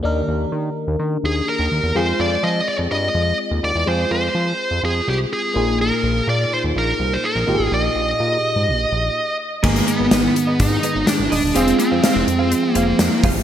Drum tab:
CC |----------------|----------------|----------------|----------------|
HH |----------------|----------------|----------------|----------------|
SD |----------------|----------------|----------------|----------------|
BD |----------------|----------------|----------------|----------------|

CC |----------------|x---------------|----------------|
HH |----------------|-xx-x-x-x-x-x-o-|xxx-x-x-x-x-x-o-|
SD |----------------|----o-------o---|----o-------o---|
BD |----------------|o-------o-------|--------------o-|